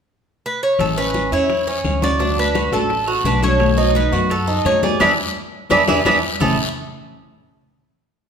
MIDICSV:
0, 0, Header, 1, 7, 480
1, 0, Start_track
1, 0, Key_signature, 3, "major"
1, 0, Tempo, 351288
1, 1082, Time_signature, 4, 2, 24, 8
1, 11327, End_track
2, 0, Start_track
2, 0, Title_t, "Cuban tres"
2, 0, Program_c, 0, 25
2, 627, Note_on_c, 0, 71, 86
2, 855, Note_off_c, 0, 71, 0
2, 860, Note_on_c, 0, 73, 91
2, 1098, Note_on_c, 0, 69, 77
2, 1099, Note_off_c, 0, 73, 0
2, 1335, Note_on_c, 0, 71, 84
2, 1337, Note_off_c, 0, 69, 0
2, 1776, Note_off_c, 0, 71, 0
2, 1818, Note_on_c, 0, 73, 89
2, 2776, Note_off_c, 0, 73, 0
2, 2781, Note_on_c, 0, 74, 97
2, 3262, Note_off_c, 0, 74, 0
2, 3268, Note_on_c, 0, 71, 86
2, 3736, Note_on_c, 0, 69, 76
2, 3749, Note_off_c, 0, 71, 0
2, 4398, Note_off_c, 0, 69, 0
2, 4456, Note_on_c, 0, 71, 80
2, 4688, Note_off_c, 0, 71, 0
2, 4693, Note_on_c, 0, 73, 94
2, 5356, Note_off_c, 0, 73, 0
2, 5413, Note_on_c, 0, 71, 89
2, 5891, Note_on_c, 0, 69, 83
2, 5899, Note_off_c, 0, 71, 0
2, 6366, Note_on_c, 0, 73, 93
2, 6378, Note_off_c, 0, 69, 0
2, 6585, Note_off_c, 0, 73, 0
2, 6600, Note_on_c, 0, 74, 82
2, 6821, Note_off_c, 0, 74, 0
2, 6843, Note_on_c, 0, 71, 87
2, 6850, Note_on_c, 0, 74, 84
2, 6857, Note_on_c, 0, 76, 70
2, 6996, Note_off_c, 0, 71, 0
2, 6996, Note_off_c, 0, 74, 0
2, 6997, Note_off_c, 0, 76, 0
2, 7803, Note_on_c, 0, 71, 102
2, 7807, Note_on_c, 0, 74, 95
2, 7812, Note_on_c, 0, 76, 74
2, 7954, Note_off_c, 0, 76, 0
2, 7955, Note_off_c, 0, 71, 0
2, 7955, Note_off_c, 0, 74, 0
2, 8040, Note_on_c, 0, 76, 86
2, 8047, Note_on_c, 0, 74, 74
2, 8057, Note_on_c, 0, 71, 70
2, 8194, Note_off_c, 0, 76, 0
2, 8195, Note_off_c, 0, 71, 0
2, 8195, Note_off_c, 0, 74, 0
2, 8278, Note_on_c, 0, 71, 86
2, 8283, Note_on_c, 0, 74, 82
2, 8292, Note_on_c, 0, 76, 75
2, 8431, Note_off_c, 0, 74, 0
2, 8433, Note_off_c, 0, 76, 0
2, 8434, Note_off_c, 0, 71, 0
2, 8763, Note_on_c, 0, 69, 73
2, 8983, Note_off_c, 0, 69, 0
2, 11327, End_track
3, 0, Start_track
3, 0, Title_t, "Cuban tres"
3, 0, Program_c, 1, 25
3, 1329, Note_on_c, 1, 61, 71
3, 1792, Note_off_c, 1, 61, 0
3, 1807, Note_on_c, 1, 64, 64
3, 2271, Note_off_c, 1, 64, 0
3, 2286, Note_on_c, 1, 61, 76
3, 2750, Note_off_c, 1, 61, 0
3, 2764, Note_on_c, 1, 66, 62
3, 2996, Note_off_c, 1, 66, 0
3, 3006, Note_on_c, 1, 62, 73
3, 3470, Note_off_c, 1, 62, 0
3, 3484, Note_on_c, 1, 66, 61
3, 3716, Note_off_c, 1, 66, 0
3, 3726, Note_on_c, 1, 69, 68
3, 4189, Note_off_c, 1, 69, 0
3, 4203, Note_on_c, 1, 66, 63
3, 4434, Note_off_c, 1, 66, 0
3, 4445, Note_on_c, 1, 62, 79
3, 4675, Note_off_c, 1, 62, 0
3, 4682, Note_on_c, 1, 69, 64
3, 5146, Note_off_c, 1, 69, 0
3, 5158, Note_on_c, 1, 63, 80
3, 5623, Note_off_c, 1, 63, 0
3, 5637, Note_on_c, 1, 66, 66
3, 6102, Note_off_c, 1, 66, 0
3, 6114, Note_on_c, 1, 63, 77
3, 6581, Note_off_c, 1, 63, 0
3, 6598, Note_on_c, 1, 68, 68
3, 6817, Note_off_c, 1, 68, 0
3, 6830, Note_on_c, 1, 62, 81
3, 6837, Note_on_c, 1, 68, 87
3, 6847, Note_on_c, 1, 64, 73
3, 6988, Note_off_c, 1, 68, 0
3, 6989, Note_off_c, 1, 62, 0
3, 6990, Note_off_c, 1, 64, 0
3, 7790, Note_on_c, 1, 62, 86
3, 7796, Note_on_c, 1, 68, 70
3, 7803, Note_on_c, 1, 64, 70
3, 7947, Note_off_c, 1, 64, 0
3, 7947, Note_off_c, 1, 68, 0
3, 7949, Note_off_c, 1, 62, 0
3, 8027, Note_on_c, 1, 64, 91
3, 8035, Note_on_c, 1, 68, 70
3, 8042, Note_on_c, 1, 62, 76
3, 8187, Note_off_c, 1, 64, 0
3, 8187, Note_off_c, 1, 68, 0
3, 8188, Note_off_c, 1, 62, 0
3, 8271, Note_on_c, 1, 62, 81
3, 8281, Note_on_c, 1, 68, 84
3, 8282, Note_on_c, 1, 64, 78
3, 8428, Note_off_c, 1, 64, 0
3, 8429, Note_off_c, 1, 62, 0
3, 8431, Note_off_c, 1, 68, 0
3, 8748, Note_on_c, 1, 57, 76
3, 8754, Note_on_c, 1, 64, 70
3, 8761, Note_on_c, 1, 68, 85
3, 8975, Note_off_c, 1, 57, 0
3, 8978, Note_off_c, 1, 64, 0
3, 8982, Note_off_c, 1, 68, 0
3, 11327, End_track
4, 0, Start_track
4, 0, Title_t, "Nylon-string guitar"
4, 0, Program_c, 2, 24
4, 1076, Note_on_c, 2, 52, 69
4, 1087, Note_on_c, 2, 56, 61
4, 1096, Note_on_c, 2, 61, 64
4, 1104, Note_on_c, 2, 64, 70
4, 1300, Note_off_c, 2, 64, 0
4, 1310, Note_off_c, 2, 52, 0
4, 1315, Note_off_c, 2, 56, 0
4, 1316, Note_on_c, 2, 64, 41
4, 1320, Note_off_c, 2, 61, 0
4, 1334, Note_on_c, 2, 61, 39
4, 1342, Note_on_c, 2, 56, 33
4, 1782, Note_off_c, 2, 64, 0
4, 1799, Note_off_c, 2, 61, 0
4, 1799, Note_on_c, 2, 64, 54
4, 1803, Note_off_c, 2, 56, 0
4, 1813, Note_on_c, 2, 61, 56
4, 1824, Note_on_c, 2, 56, 51
4, 2027, Note_off_c, 2, 56, 0
4, 2029, Note_off_c, 2, 61, 0
4, 2031, Note_off_c, 2, 64, 0
4, 2512, Note_on_c, 2, 52, 45
4, 2522, Note_on_c, 2, 56, 47
4, 2531, Note_on_c, 2, 61, 45
4, 2535, Note_on_c, 2, 64, 46
4, 2735, Note_off_c, 2, 64, 0
4, 2747, Note_off_c, 2, 61, 0
4, 2748, Note_off_c, 2, 52, 0
4, 2751, Note_on_c, 2, 64, 54
4, 2753, Note_off_c, 2, 56, 0
4, 2764, Note_on_c, 2, 61, 52
4, 2776, Note_on_c, 2, 56, 48
4, 2987, Note_off_c, 2, 64, 0
4, 2988, Note_on_c, 2, 50, 62
4, 2993, Note_off_c, 2, 56, 0
4, 2994, Note_off_c, 2, 61, 0
4, 2999, Note_on_c, 2, 57, 71
4, 3010, Note_on_c, 2, 62, 65
4, 3013, Note_on_c, 2, 66, 72
4, 3219, Note_off_c, 2, 66, 0
4, 3225, Note_off_c, 2, 50, 0
4, 3231, Note_off_c, 2, 57, 0
4, 3232, Note_off_c, 2, 62, 0
4, 3236, Note_on_c, 2, 66, 42
4, 3248, Note_on_c, 2, 62, 36
4, 3264, Note_on_c, 2, 57, 33
4, 3699, Note_off_c, 2, 66, 0
4, 3715, Note_off_c, 2, 62, 0
4, 3715, Note_on_c, 2, 66, 68
4, 3723, Note_off_c, 2, 57, 0
4, 3732, Note_on_c, 2, 62, 51
4, 3742, Note_on_c, 2, 57, 53
4, 3946, Note_off_c, 2, 57, 0
4, 3949, Note_off_c, 2, 66, 0
4, 3951, Note_off_c, 2, 62, 0
4, 4433, Note_on_c, 2, 50, 48
4, 4442, Note_on_c, 2, 57, 51
4, 4451, Note_on_c, 2, 62, 51
4, 4458, Note_on_c, 2, 66, 51
4, 4655, Note_off_c, 2, 66, 0
4, 4667, Note_off_c, 2, 50, 0
4, 4671, Note_off_c, 2, 57, 0
4, 4671, Note_off_c, 2, 62, 0
4, 4671, Note_on_c, 2, 66, 57
4, 4687, Note_on_c, 2, 62, 54
4, 4697, Note_on_c, 2, 57, 54
4, 4906, Note_off_c, 2, 66, 0
4, 4912, Note_off_c, 2, 57, 0
4, 4913, Note_on_c, 2, 47, 63
4, 4914, Note_off_c, 2, 62, 0
4, 4921, Note_on_c, 2, 51, 68
4, 4928, Note_on_c, 2, 57, 61
4, 4930, Note_on_c, 2, 59, 71
4, 4938, Note_on_c, 2, 66, 68
4, 5139, Note_off_c, 2, 66, 0
4, 5146, Note_off_c, 2, 47, 0
4, 5151, Note_off_c, 2, 51, 0
4, 5151, Note_off_c, 2, 59, 0
4, 5154, Note_off_c, 2, 57, 0
4, 5156, Note_on_c, 2, 66, 44
4, 5168, Note_on_c, 2, 59, 37
4, 5177, Note_on_c, 2, 57, 36
4, 5607, Note_off_c, 2, 66, 0
4, 5618, Note_off_c, 2, 59, 0
4, 5624, Note_on_c, 2, 66, 62
4, 5630, Note_off_c, 2, 57, 0
4, 5634, Note_on_c, 2, 59, 60
4, 5647, Note_on_c, 2, 57, 47
4, 5650, Note_on_c, 2, 51, 46
4, 5857, Note_off_c, 2, 57, 0
4, 5858, Note_off_c, 2, 51, 0
4, 5860, Note_off_c, 2, 59, 0
4, 5861, Note_off_c, 2, 66, 0
4, 6346, Note_on_c, 2, 51, 47
4, 6358, Note_on_c, 2, 57, 48
4, 6367, Note_on_c, 2, 59, 44
4, 6375, Note_on_c, 2, 66, 51
4, 6573, Note_off_c, 2, 66, 0
4, 6582, Note_off_c, 2, 51, 0
4, 6582, Note_off_c, 2, 59, 0
4, 6588, Note_off_c, 2, 57, 0
4, 6589, Note_on_c, 2, 66, 64
4, 6598, Note_on_c, 2, 59, 56
4, 6607, Note_on_c, 2, 57, 56
4, 6617, Note_on_c, 2, 51, 47
4, 6812, Note_off_c, 2, 59, 0
4, 6822, Note_off_c, 2, 57, 0
4, 6823, Note_off_c, 2, 66, 0
4, 6827, Note_on_c, 2, 59, 87
4, 6830, Note_on_c, 2, 62, 94
4, 6830, Note_on_c, 2, 64, 87
4, 6837, Note_off_c, 2, 51, 0
4, 6984, Note_off_c, 2, 64, 0
4, 6985, Note_off_c, 2, 59, 0
4, 6985, Note_off_c, 2, 62, 0
4, 7780, Note_on_c, 2, 59, 85
4, 7787, Note_on_c, 2, 62, 84
4, 7795, Note_on_c, 2, 64, 87
4, 7941, Note_off_c, 2, 62, 0
4, 7942, Note_off_c, 2, 59, 0
4, 7943, Note_off_c, 2, 64, 0
4, 8017, Note_on_c, 2, 59, 77
4, 8023, Note_on_c, 2, 62, 81
4, 8032, Note_on_c, 2, 64, 81
4, 8180, Note_off_c, 2, 59, 0
4, 8181, Note_off_c, 2, 62, 0
4, 8183, Note_off_c, 2, 64, 0
4, 8263, Note_on_c, 2, 62, 89
4, 8265, Note_on_c, 2, 59, 82
4, 8266, Note_on_c, 2, 64, 86
4, 8421, Note_off_c, 2, 62, 0
4, 8422, Note_off_c, 2, 64, 0
4, 8423, Note_off_c, 2, 59, 0
4, 8739, Note_on_c, 2, 45, 69
4, 8745, Note_on_c, 2, 52, 74
4, 8753, Note_on_c, 2, 56, 73
4, 8761, Note_on_c, 2, 64, 67
4, 8763, Note_on_c, 2, 61, 71
4, 8940, Note_off_c, 2, 45, 0
4, 8942, Note_off_c, 2, 52, 0
4, 8946, Note_off_c, 2, 56, 0
4, 8950, Note_off_c, 2, 64, 0
4, 8951, Note_off_c, 2, 61, 0
4, 11327, End_track
5, 0, Start_track
5, 0, Title_t, "Upright bass"
5, 0, Program_c, 3, 32
5, 1077, Note_on_c, 3, 33, 84
5, 1750, Note_off_c, 3, 33, 0
5, 1794, Note_on_c, 3, 40, 75
5, 2468, Note_off_c, 3, 40, 0
5, 2516, Note_on_c, 3, 38, 83
5, 3640, Note_off_c, 3, 38, 0
5, 3712, Note_on_c, 3, 33, 81
5, 4385, Note_off_c, 3, 33, 0
5, 4432, Note_on_c, 3, 35, 84
5, 5556, Note_off_c, 3, 35, 0
5, 5629, Note_on_c, 3, 42, 85
5, 6302, Note_off_c, 3, 42, 0
5, 6346, Note_on_c, 3, 40, 83
5, 6797, Note_off_c, 3, 40, 0
5, 6831, Note_on_c, 3, 40, 91
5, 7012, Note_off_c, 3, 40, 0
5, 7792, Note_on_c, 3, 40, 92
5, 7972, Note_off_c, 3, 40, 0
5, 8034, Note_on_c, 3, 40, 75
5, 8213, Note_off_c, 3, 40, 0
5, 8273, Note_on_c, 3, 40, 85
5, 8453, Note_off_c, 3, 40, 0
5, 8756, Note_on_c, 3, 33, 90
5, 8979, Note_off_c, 3, 33, 0
5, 11327, End_track
6, 0, Start_track
6, 0, Title_t, "Muted nylon-string guitar strokes"
6, 2036, Note_on_c, 9, 29, 57
6, 2172, Note_off_c, 9, 29, 0
6, 3957, Note_on_c, 9, 29, 53
6, 4094, Note_off_c, 9, 29, 0
6, 5866, Note_on_c, 9, 29, 53
6, 6002, Note_off_c, 9, 29, 0
6, 11327, End_track
7, 0, Start_track
7, 0, Title_t, "Drums"
7, 1078, Note_on_c, 9, 75, 56
7, 1084, Note_on_c, 9, 63, 32
7, 1085, Note_on_c, 9, 60, 57
7, 1085, Note_on_c, 9, 74, 70
7, 1215, Note_off_c, 9, 75, 0
7, 1221, Note_off_c, 9, 60, 0
7, 1221, Note_off_c, 9, 63, 0
7, 1222, Note_off_c, 9, 74, 0
7, 1319, Note_on_c, 9, 63, 33
7, 1328, Note_on_c, 9, 60, 31
7, 1456, Note_off_c, 9, 63, 0
7, 1465, Note_off_c, 9, 60, 0
7, 1560, Note_on_c, 9, 63, 84
7, 1565, Note_on_c, 9, 73, 59
7, 1568, Note_on_c, 9, 60, 60
7, 1697, Note_off_c, 9, 63, 0
7, 1702, Note_off_c, 9, 73, 0
7, 1704, Note_off_c, 9, 60, 0
7, 1807, Note_on_c, 9, 63, 31
7, 1807, Note_on_c, 9, 73, 60
7, 1943, Note_off_c, 9, 63, 0
7, 1944, Note_off_c, 9, 73, 0
7, 2042, Note_on_c, 9, 75, 60
7, 2044, Note_on_c, 9, 60, 58
7, 2050, Note_on_c, 9, 63, 31
7, 2051, Note_on_c, 9, 74, 65
7, 2179, Note_off_c, 9, 75, 0
7, 2181, Note_off_c, 9, 60, 0
7, 2187, Note_off_c, 9, 63, 0
7, 2187, Note_off_c, 9, 74, 0
7, 2283, Note_on_c, 9, 60, 31
7, 2287, Note_on_c, 9, 63, 31
7, 2419, Note_off_c, 9, 60, 0
7, 2424, Note_off_c, 9, 63, 0
7, 2520, Note_on_c, 9, 73, 57
7, 2521, Note_on_c, 9, 60, 29
7, 2521, Note_on_c, 9, 61, 74
7, 2525, Note_on_c, 9, 75, 64
7, 2526, Note_on_c, 9, 63, 74
7, 2657, Note_off_c, 9, 73, 0
7, 2658, Note_off_c, 9, 60, 0
7, 2658, Note_off_c, 9, 61, 0
7, 2661, Note_off_c, 9, 75, 0
7, 2663, Note_off_c, 9, 63, 0
7, 2764, Note_on_c, 9, 73, 63
7, 2765, Note_on_c, 9, 60, 29
7, 2767, Note_on_c, 9, 63, 87
7, 2900, Note_off_c, 9, 73, 0
7, 2901, Note_off_c, 9, 60, 0
7, 2903, Note_off_c, 9, 63, 0
7, 2998, Note_on_c, 9, 74, 68
7, 3007, Note_on_c, 9, 60, 63
7, 3013, Note_on_c, 9, 63, 33
7, 3135, Note_off_c, 9, 74, 0
7, 3144, Note_off_c, 9, 60, 0
7, 3150, Note_off_c, 9, 63, 0
7, 3247, Note_on_c, 9, 60, 29
7, 3251, Note_on_c, 9, 63, 34
7, 3384, Note_off_c, 9, 60, 0
7, 3387, Note_off_c, 9, 63, 0
7, 3479, Note_on_c, 9, 73, 60
7, 3483, Note_on_c, 9, 75, 65
7, 3487, Note_on_c, 9, 60, 59
7, 3490, Note_on_c, 9, 63, 82
7, 3616, Note_off_c, 9, 73, 0
7, 3620, Note_off_c, 9, 75, 0
7, 3623, Note_off_c, 9, 60, 0
7, 3627, Note_off_c, 9, 63, 0
7, 3724, Note_on_c, 9, 73, 58
7, 3725, Note_on_c, 9, 63, 34
7, 3861, Note_off_c, 9, 63, 0
7, 3861, Note_off_c, 9, 73, 0
7, 3963, Note_on_c, 9, 60, 62
7, 3967, Note_on_c, 9, 74, 67
7, 3972, Note_on_c, 9, 63, 32
7, 4100, Note_off_c, 9, 60, 0
7, 4103, Note_off_c, 9, 74, 0
7, 4109, Note_off_c, 9, 63, 0
7, 4198, Note_on_c, 9, 75, 62
7, 4206, Note_on_c, 9, 63, 29
7, 4207, Note_on_c, 9, 60, 32
7, 4334, Note_off_c, 9, 75, 0
7, 4343, Note_off_c, 9, 60, 0
7, 4343, Note_off_c, 9, 63, 0
7, 4441, Note_on_c, 9, 60, 32
7, 4441, Note_on_c, 9, 61, 70
7, 4444, Note_on_c, 9, 63, 73
7, 4446, Note_on_c, 9, 73, 65
7, 4577, Note_off_c, 9, 60, 0
7, 4577, Note_off_c, 9, 61, 0
7, 4581, Note_off_c, 9, 63, 0
7, 4583, Note_off_c, 9, 73, 0
7, 4681, Note_on_c, 9, 73, 63
7, 4683, Note_on_c, 9, 60, 28
7, 4685, Note_on_c, 9, 63, 80
7, 4818, Note_off_c, 9, 73, 0
7, 4820, Note_off_c, 9, 60, 0
7, 4821, Note_off_c, 9, 63, 0
7, 4916, Note_on_c, 9, 74, 66
7, 4917, Note_on_c, 9, 75, 56
7, 4922, Note_on_c, 9, 60, 60
7, 5053, Note_off_c, 9, 74, 0
7, 5053, Note_off_c, 9, 75, 0
7, 5058, Note_off_c, 9, 60, 0
7, 5164, Note_on_c, 9, 60, 29
7, 5300, Note_off_c, 9, 60, 0
7, 5397, Note_on_c, 9, 73, 62
7, 5398, Note_on_c, 9, 60, 58
7, 5399, Note_on_c, 9, 63, 84
7, 5534, Note_off_c, 9, 73, 0
7, 5535, Note_off_c, 9, 60, 0
7, 5536, Note_off_c, 9, 63, 0
7, 5641, Note_on_c, 9, 73, 65
7, 5648, Note_on_c, 9, 63, 32
7, 5778, Note_off_c, 9, 73, 0
7, 5785, Note_off_c, 9, 63, 0
7, 5872, Note_on_c, 9, 74, 63
7, 5879, Note_on_c, 9, 75, 59
7, 5881, Note_on_c, 9, 60, 58
7, 5882, Note_on_c, 9, 63, 33
7, 6009, Note_off_c, 9, 74, 0
7, 6016, Note_off_c, 9, 75, 0
7, 6018, Note_off_c, 9, 60, 0
7, 6018, Note_off_c, 9, 63, 0
7, 6118, Note_on_c, 9, 60, 30
7, 6119, Note_on_c, 9, 63, 30
7, 6254, Note_off_c, 9, 60, 0
7, 6255, Note_off_c, 9, 63, 0
7, 6354, Note_on_c, 9, 73, 64
7, 6356, Note_on_c, 9, 60, 29
7, 6356, Note_on_c, 9, 61, 77
7, 6356, Note_on_c, 9, 75, 55
7, 6361, Note_on_c, 9, 63, 76
7, 6490, Note_off_c, 9, 73, 0
7, 6493, Note_off_c, 9, 60, 0
7, 6493, Note_off_c, 9, 61, 0
7, 6493, Note_off_c, 9, 75, 0
7, 6498, Note_off_c, 9, 63, 0
7, 6596, Note_on_c, 9, 63, 87
7, 6596, Note_on_c, 9, 73, 62
7, 6599, Note_on_c, 9, 60, 30
7, 6733, Note_off_c, 9, 63, 0
7, 6733, Note_off_c, 9, 73, 0
7, 6735, Note_off_c, 9, 60, 0
7, 6834, Note_on_c, 9, 63, 98
7, 6836, Note_on_c, 9, 74, 95
7, 6836, Note_on_c, 9, 75, 91
7, 6838, Note_on_c, 9, 60, 88
7, 6971, Note_off_c, 9, 63, 0
7, 6972, Note_off_c, 9, 74, 0
7, 6973, Note_off_c, 9, 75, 0
7, 6975, Note_off_c, 9, 60, 0
7, 7796, Note_on_c, 9, 60, 83
7, 7797, Note_on_c, 9, 63, 91
7, 7797, Note_on_c, 9, 74, 89
7, 7801, Note_on_c, 9, 75, 85
7, 7933, Note_off_c, 9, 60, 0
7, 7933, Note_off_c, 9, 74, 0
7, 7934, Note_off_c, 9, 63, 0
7, 7938, Note_off_c, 9, 75, 0
7, 8032, Note_on_c, 9, 74, 83
7, 8035, Note_on_c, 9, 75, 90
7, 8036, Note_on_c, 9, 60, 93
7, 8039, Note_on_c, 9, 63, 90
7, 8168, Note_off_c, 9, 74, 0
7, 8172, Note_off_c, 9, 75, 0
7, 8173, Note_off_c, 9, 60, 0
7, 8175, Note_off_c, 9, 63, 0
7, 8265, Note_on_c, 9, 74, 88
7, 8273, Note_on_c, 9, 75, 86
7, 8276, Note_on_c, 9, 60, 88
7, 8276, Note_on_c, 9, 63, 81
7, 8402, Note_off_c, 9, 74, 0
7, 8409, Note_off_c, 9, 75, 0
7, 8412, Note_off_c, 9, 63, 0
7, 8413, Note_off_c, 9, 60, 0
7, 8748, Note_on_c, 9, 74, 93
7, 8756, Note_on_c, 9, 75, 94
7, 8759, Note_on_c, 9, 61, 88
7, 8760, Note_on_c, 9, 64, 93
7, 8884, Note_off_c, 9, 74, 0
7, 8892, Note_off_c, 9, 75, 0
7, 8896, Note_off_c, 9, 61, 0
7, 8896, Note_off_c, 9, 64, 0
7, 11327, End_track
0, 0, End_of_file